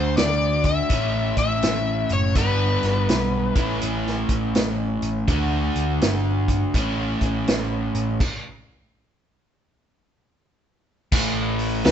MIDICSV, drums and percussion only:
0, 0, Header, 1, 2, 480
1, 0, Start_track
1, 0, Tempo, 729040
1, 1559, Time_signature, 4, 2, 24, 8
1, 7845, End_track
2, 0, Start_track
2, 0, Title_t, "Drums"
2, 110, Note_on_c, 9, 42, 72
2, 116, Note_on_c, 9, 38, 102
2, 176, Note_off_c, 9, 42, 0
2, 182, Note_off_c, 9, 38, 0
2, 418, Note_on_c, 9, 42, 53
2, 423, Note_on_c, 9, 36, 74
2, 484, Note_off_c, 9, 42, 0
2, 489, Note_off_c, 9, 36, 0
2, 590, Note_on_c, 9, 42, 72
2, 593, Note_on_c, 9, 36, 97
2, 656, Note_off_c, 9, 42, 0
2, 659, Note_off_c, 9, 36, 0
2, 899, Note_on_c, 9, 42, 55
2, 902, Note_on_c, 9, 36, 66
2, 965, Note_off_c, 9, 42, 0
2, 968, Note_off_c, 9, 36, 0
2, 1070, Note_on_c, 9, 42, 68
2, 1076, Note_on_c, 9, 38, 87
2, 1135, Note_off_c, 9, 42, 0
2, 1141, Note_off_c, 9, 38, 0
2, 1377, Note_on_c, 9, 42, 52
2, 1443, Note_off_c, 9, 42, 0
2, 1548, Note_on_c, 9, 42, 83
2, 1552, Note_on_c, 9, 36, 99
2, 1614, Note_off_c, 9, 42, 0
2, 1617, Note_off_c, 9, 36, 0
2, 1861, Note_on_c, 9, 42, 54
2, 1867, Note_on_c, 9, 38, 27
2, 1927, Note_off_c, 9, 42, 0
2, 1933, Note_off_c, 9, 38, 0
2, 2032, Note_on_c, 9, 42, 74
2, 2038, Note_on_c, 9, 38, 103
2, 2098, Note_off_c, 9, 42, 0
2, 2104, Note_off_c, 9, 38, 0
2, 2340, Note_on_c, 9, 42, 61
2, 2342, Note_on_c, 9, 36, 96
2, 2406, Note_off_c, 9, 42, 0
2, 2408, Note_off_c, 9, 36, 0
2, 2511, Note_on_c, 9, 42, 75
2, 2577, Note_off_c, 9, 42, 0
2, 2676, Note_on_c, 9, 38, 27
2, 2742, Note_off_c, 9, 38, 0
2, 2824, Note_on_c, 9, 36, 70
2, 2824, Note_on_c, 9, 42, 59
2, 2890, Note_off_c, 9, 36, 0
2, 2890, Note_off_c, 9, 42, 0
2, 2994, Note_on_c, 9, 42, 73
2, 3000, Note_on_c, 9, 38, 99
2, 3060, Note_off_c, 9, 42, 0
2, 3066, Note_off_c, 9, 38, 0
2, 3305, Note_on_c, 9, 42, 62
2, 3371, Note_off_c, 9, 42, 0
2, 3475, Note_on_c, 9, 42, 79
2, 3476, Note_on_c, 9, 36, 107
2, 3541, Note_off_c, 9, 42, 0
2, 3542, Note_off_c, 9, 36, 0
2, 3789, Note_on_c, 9, 42, 53
2, 3855, Note_off_c, 9, 42, 0
2, 3960, Note_on_c, 9, 42, 75
2, 3966, Note_on_c, 9, 38, 101
2, 4025, Note_off_c, 9, 42, 0
2, 4031, Note_off_c, 9, 38, 0
2, 4269, Note_on_c, 9, 36, 77
2, 4272, Note_on_c, 9, 42, 55
2, 4335, Note_off_c, 9, 36, 0
2, 4338, Note_off_c, 9, 42, 0
2, 4439, Note_on_c, 9, 36, 98
2, 4443, Note_on_c, 9, 42, 75
2, 4505, Note_off_c, 9, 36, 0
2, 4508, Note_off_c, 9, 42, 0
2, 4748, Note_on_c, 9, 36, 73
2, 4750, Note_on_c, 9, 42, 51
2, 4814, Note_off_c, 9, 36, 0
2, 4816, Note_off_c, 9, 42, 0
2, 4921, Note_on_c, 9, 42, 68
2, 4927, Note_on_c, 9, 38, 93
2, 4987, Note_off_c, 9, 42, 0
2, 4993, Note_off_c, 9, 38, 0
2, 5232, Note_on_c, 9, 42, 55
2, 5298, Note_off_c, 9, 42, 0
2, 5401, Note_on_c, 9, 36, 102
2, 5403, Note_on_c, 9, 49, 84
2, 5467, Note_off_c, 9, 36, 0
2, 5469, Note_off_c, 9, 49, 0
2, 7321, Note_on_c, 9, 49, 127
2, 7323, Note_on_c, 9, 36, 111
2, 7387, Note_off_c, 9, 49, 0
2, 7389, Note_off_c, 9, 36, 0
2, 7630, Note_on_c, 9, 46, 58
2, 7696, Note_off_c, 9, 46, 0
2, 7799, Note_on_c, 9, 46, 80
2, 7805, Note_on_c, 9, 38, 102
2, 7845, Note_off_c, 9, 38, 0
2, 7845, Note_off_c, 9, 46, 0
2, 7845, End_track
0, 0, End_of_file